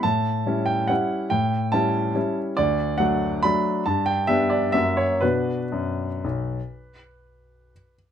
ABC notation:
X:1
M:3/4
L:1/8
Q:1/4=138
K:Bm
V:1 name="Grand piano"
a3 g f2 | g2 a3 z | d2 f2 b2 | a g e d e c |
B6- | B4- B z |]
V:2 name="Grand piano"
A,,2 [G,CE]2 [G,CE]2 | A,,2 [G,CE]2 [G,CE]2 | D,,2 [F,A,D]2 [F,A,D]2 | G,,2 [G,B,D]2 [F,,^A,CF]2 |
[B,,DF]2 F,,2 B,,,2 | z6 |]